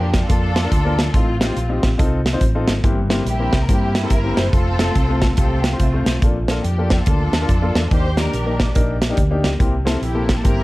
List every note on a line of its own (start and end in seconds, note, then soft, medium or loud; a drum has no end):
0.00 0.23 F2 medium
0.00 0.17 A#3 medium
0.00 0.21 D4 medium
0.00 0.17 D4 medium
0.00 0.17 F4 medium
0.00 0.20 G4 medium
0.00 0.18 A#4 medium
0.14 kick medium
0.14 snare loud
0.14 closed hi-hat medium
0.22 1.11 D4 medium
0.22 1.11 F4 medium
0.22 1.15 A4 loud
0.29 0.66 F2 medium
0.29 0.49 A#3 medium
0.29 0.49 D4 medium
0.29 0.49 F4 medium
0.29 0.49 A4 medium
0.29 kick loud
0.29 closed hi-hat medium
0.56 snare loud
0.56 closed hi-hat medium
0.64 0.72 A#3 medium
0.64 0.72 D4 medium
0.64 0.72 F4 medium
0.64 0.72 A#4 medium
0.72 1.08 D2 medium
0.72 kick medium
0.72 closed hi-hat medium
0.85 1.02 A#3 medium
0.85 1.02 D4 medium
0.85 1.03 F4 medium
0.85 1.03 A#4 medium
0.99 snare medium
0.99 closed hi-hat medium
1.14 1.50 A1 medium
1.14 1.79 A2 medium
1.14 1.27 C4 medium
1.14 1.41 C4 medium
1.14 1.27 D#4 medium
1.14 1.27 F4 medium
1.14 1.40 F4 medium
1.14 1.28 A4 medium
1.14 kick loud
1.14 closed hi-hat medium
1.40 1.52 C4 medium
1.40 2.22 C4 medium
1.40 1.52 D#4 medium
1.40 1.53 F4 medium
1.40 1.80 F4 medium
1.40 1.53 G4 medium
1.40 snare loud
1.40 closed hi-hat medium
1.57 1.79 A#1 medium
1.57 closed hi-hat medium
1.69 1.87 C4 medium
1.69 1.87 D#4 medium
1.69 1.87 F4 medium
1.69 1.87 G4 medium
1.83 1.97 A1 medium
1.83 kick medium
1.83 snare loud
1.83 closed hi-hat medium
1.98 2.35 C2 medium
1.98 2.18 C4 medium
1.98 2.18 D#4 medium
1.98 2.18 F4 medium
1.98 2.19 A4 medium
1.98 kick loud
1.98 closed hi-hat medium
2.26 snare loud
2.26 closed hi-hat medium
2.33 2.41 C4 medium
2.33 2.41 D#4 medium
2.33 2.41 F4 medium
2.33 2.42 C5 medium
2.41 2.64 A1 medium
2.41 kick medium
2.41 closed hi-hat medium
2.55 2.72 C4 medium
2.55 2.72 D#4 medium
2.55 2.72 F4 medium
2.55 2.72 A4 medium
2.67 2.81 G#1 medium
2.67 snare loud
2.67 closed hi-hat medium
2.84 3.20 G1 loud
2.84 3.49 G2 medium
2.84 2.97 A#3 medium
2.84 2.97 C4 medium
2.84 2.97 E4 medium
2.84 2.97 G4 medium
2.84 kick loud
2.84 closed hi-hat medium
3.10 3.22 A#3 medium
3.10 3.22 C4 medium
3.10 3.22 E4 medium
3.10 3.22 G4 medium
3.10 snare loud
3.10 closed hi-hat medium
3.25 3.48 A#1 medium
3.25 3.69 A#3 medium
3.25 3.69 E4 medium
3.25 3.59 G4 medium
3.25 closed hi-hat medium
3.40 3.57 A#3 medium
3.40 3.57 C4 medium
3.40 3.57 E4 medium
3.40 3.57 A#4 medium
3.53 3.66 C2 medium
3.53 kick medium
3.53 snare loud
3.53 closed hi-hat medium
3.62 3.69 A#4 medium
3.69 4.05 G2 medium
3.69 3.88 A#3 medium
3.69 4.50 A#3 medium
3.69 3.88 C4 medium
3.69 3.89 E4 medium
3.69 4.50 E4 medium
3.69 3.89 G4 medium
3.69 4.04 G4 loud
3.69 kick loud
3.69 closed hi-hat medium
3.95 snare loud
3.95 closed hi-hat medium
4.03 4.11 A#3 medium
4.03 4.11 C4 medium
4.03 4.11 E4 medium
4.03 4.11 G4 medium
4.03 4.11 A4 medium
4.10 4.33 G1 medium
4.10 4.37 A#4 loud
4.10 kick medium
4.10 closed hi-hat medium
4.24 4.41 A#3 medium
4.24 4.41 C4 medium
4.24 4.41 E4 medium
4.24 4.41 G4 medium
4.37 4.51 F#1 medium
4.37 4.53 C5 loud
4.37 snare loud
4.37 closed hi-hat medium
4.53 4.89 F1 loud
4.53 4.66 A3 medium
4.53 4.66 C4 medium
4.53 5.34 C4 medium
4.53 4.66 F4 medium
4.53 5.35 F4 medium
4.53 4.66 A4 medium
4.53 5.34 A4 loud
4.53 kick loud
4.53 closed hi-hat medium
4.79 4.91 A3 medium
4.79 4.91 C4 medium
4.79 4.91 F4 medium
4.79 4.92 A4 medium
4.79 snare loud
4.79 closed hi-hat medium
4.95 5.31 C2 medium
4.95 kick medium
4.95 closed hi-hat medium
5.08 5.26 A3 medium
5.08 5.26 C4 medium
5.08 5.26 F4 medium
5.08 5.26 A4 medium
5.22 kick medium
5.22 snare loud
5.22 closed hi-hat medium
5.37 5.74 C2 medium
5.37 5.58 A3 medium
5.37 5.80 C4 medium
5.37 5.58 C4 medium
5.37 5.79 F4 medium
5.37 5.58 F4 medium
5.37 5.58 G4 medium
5.37 5.62 A4 medium
5.37 kick loud
5.37 closed hi-hat medium
5.63 5.80 G4 medium
5.63 snare loud
5.63 closed hi-hat medium
5.73 5.80 A3 medium
5.73 5.80 C4 medium
5.73 5.81 F4 medium
5.73 5.81 C5 medium
5.80 6.02 C2 medium
5.80 6.20 A3 medium
5.80 6.20 C4 medium
5.80 6.14 F4 medium
5.80 kick medium
5.80 closed hi-hat medium
5.94 6.11 A3 medium
5.94 6.11 C4 medium
5.94 6.11 F4 medium
5.94 6.11 C5 medium
6.06 6.20 B1 medium
6.06 snare medium
6.06 closed hi-hat medium
6.22 6.58 A#1 medium
6.22 6.87 A#2 medium
6.22 6.36 A#3 medium
6.22 6.36 D4 medium
6.22 6.36 F4 medium
6.22 6.36 A4 medium
6.22 kick loud
6.22 closed hi-hat medium
6.48 6.61 A#3 medium
6.48 6.61 D4 medium
6.48 6.61 F4 medium
6.48 6.62 A4 medium
6.48 snare loud
6.48 closed hi-hat medium
6.63 7.00 F2 medium
6.63 6.97 D4 medium
6.63 6.96 G4 medium
6.63 closed hi-hat medium
6.78 6.95 A#3 medium
6.78 6.95 D4 medium
6.78 6.95 F4 medium
6.78 6.96 A4 medium
6.90 kick medium
6.90 snare loud
6.90 closed hi-hat medium
6.98 7.87 D4 medium
6.98 7.87 F4 medium
6.98 7.91 A4 medium
7.06 7.29 D2 medium
7.06 7.27 A#3 medium
7.06 7.27 D4 medium
7.06 7.27 F4 medium
7.06 7.27 A4 medium
7.06 kick loud
7.06 closed hi-hat medium
7.33 7.46 D#2 medium
7.33 snare loud
7.33 closed hi-hat medium
7.41 7.49 A#3 medium
7.41 7.49 D4 medium
7.41 7.49 F4 medium
7.41 7.50 A#4 medium
7.49 7.71 F2 medium
7.49 kick medium
7.49 closed hi-hat medium
7.62 7.79 A#3 medium
7.62 7.79 D4 medium
7.62 7.79 F4 medium
7.62 7.80 A4 medium
7.75 7.89 E2 medium
7.75 snare loud
7.75 closed hi-hat medium
7.91 8.27 D#2 medium
7.91 8.56 D#3 medium
7.91 8.04 A#3 medium
7.91 8.04 D4 medium
7.91 8.05 D#4 medium
7.91 8.05 G4 medium
7.91 8.17 G4 medium
7.91 8.16 C5 loud
7.91 kick loud
7.91 closed hi-hat medium
8.17 8.29 A#3 medium
8.17 8.29 D4 medium
8.17 8.99 D4 medium
8.17 8.29 D#4 medium
8.17 8.30 G4 medium
8.17 8.98 G4 medium
8.17 8.60 A#4 medium
8.17 snare loud
8.17 closed hi-hat medium
8.33 8.69 A#1 medium
8.33 closed hi-hat medium
8.46 8.63 A#3 medium
8.46 8.63 D4 medium
8.46 8.64 D#4 medium
8.46 8.64 A#4 medium
8.60 kick medium
8.60 snare loud
8.60 closed hi-hat medium
8.75 9.12 A#1 medium
8.75 8.95 A#3 medium
8.75 8.95 D4 medium
8.75 8.95 D#4 medium
8.75 8.95 A#4 loud
8.75 kick loud
8.75 closed hi-hat medium
9.02 snare loud
9.02 closed hi-hat medium
9.09 9.18 A#3 medium
9.09 9.18 D4 medium
9.09 9.18 D#4 medium
9.09 9.18 G4 medium
9.17 9.40 D2 medium
9.17 kick medium
9.17 closed hi-hat medium
9.31 9.48 A#3 medium
9.31 9.48 D4 medium
9.31 9.48 D#4 medium
9.31 9.48 G4 medium
9.44 9.57 C#2 medium
9.44 snare medium
9.44 closed hi-hat medium
9.59 9.96 C2 medium
9.59 10.24 C3 medium
9.59 9.73 A#3 medium
9.59 9.73 C4 medium
9.59 9.73 E4 medium
9.59 9.73 G4 medium
9.59 kick medium
9.59 closed hi-hat medium
9.85 9.98 A#3 medium
9.85 9.98 C4 medium
9.85 9.98 E4 medium
9.85 9.98 A4 medium
9.85 snare loud
9.85 closed hi-hat medium
10.02 10.38 A#1 medium
10.02 10.63 A#3 medium
10.02 10.43 E4 medium
10.02 10.35 G4 medium
10.02 closed hi-hat medium
10.14 10.32 A#3 medium
10.14 10.32 C4 medium
10.14 10.32 E4 medium
10.14 10.32 A4 medium
10.29 kick medium
10.29 snare loud
10.29 closed hi-hat medium
10.37 10.45 A4 medium
10.44 10.63 G1 medium
10.44 10.63 A#3 medium
10.44 10.63 C4 medium
10.44 10.63 E4 medium
10.44 10.63 G4 medium
10.44 10.63 A#4 loud
10.44 kick loud
10.44 closed hi-hat medium